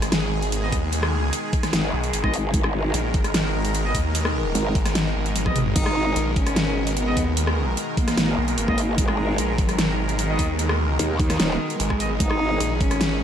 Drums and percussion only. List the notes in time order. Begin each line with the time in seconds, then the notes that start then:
0.02 cross-stick, closed hi-hat
0.12 snare, closed hi-hat
0.42 closed hi-hat
0.52 closed hi-hat
0.72 kick, open hi-hat
0.93 closed hi-hat
1.03 cross-stick
1.33 closed hi-hat
1.53 kick, open hi-hat
1.63 cross-stick, snare, closed hi-hat
1.73 snare, closed hi-hat
2.04 closed hi-hat
2.13 closed hi-hat
2.24 kick, cross-stick
2.34 open hi-hat
2.54 kick, closed hi-hat
2.64 cross-stick
2.94 closed hi-hat
3.14 kick, open hi-hat
3.24 cross-stick, closed hi-hat
3.34 snare, closed hi-hat
3.65 closed hi-hat
3.75 closed hi-hat
3.95 kick, open hi-hat
4.15 closed hi-hat
4.25 cross-stick
4.55 closed hi-hat
4.75 kick, open hi-hat
4.85 cross-stick, snare, closed hi-hat
4.95 snare, closed hi-hat
5.26 closed hi-hat
5.36 closed hi-hat, high tom
5.46 kick, cross-stick, high tom
5.56 open hi-hat, mid tom
5.66 mid tom
5.76 kick, closed hi-hat, crash
5.86 cross-stick
6.16 closed hi-hat
6.36 kick, open hi-hat
6.47 cross-stick, closed hi-hat
6.56 snare, closed hi-hat
6.87 closed hi-hat
6.97 closed hi-hat
7.17 kick, open hi-hat
7.37 closed hi-hat
7.47 cross-stick
7.77 closed hi-hat
7.97 kick, open hi-hat
8.08 cross-stick, snare, closed hi-hat
8.18 snare, closed hi-hat
8.48 closed hi-hat
8.58 closed hi-hat
8.68 kick, cross-stick
8.78 open hi-hat
8.98 kick, closed hi-hat
9.08 cross-stick
9.38 closed hi-hat
9.58 kick, open hi-hat
9.69 cross-stick, closed hi-hat
9.79 snare, closed hi-hat
10.09 closed hi-hat
10.19 closed hi-hat
10.39 kick, open hi-hat
10.59 closed hi-hat
10.69 cross-stick
10.99 closed hi-hat
11.20 kick, open hi-hat
11.30 cross-stick, snare, closed hi-hat
11.40 snare, closed hi-hat
11.70 closed hi-hat
11.80 closed hi-hat
11.90 kick, cross-stick
12.00 open hi-hat
12.20 kick, closed hi-hat
12.30 cross-stick
12.60 closed hi-hat
12.81 kick, open hi-hat
12.91 cross-stick, closed hi-hat
13.01 snare, closed hi-hat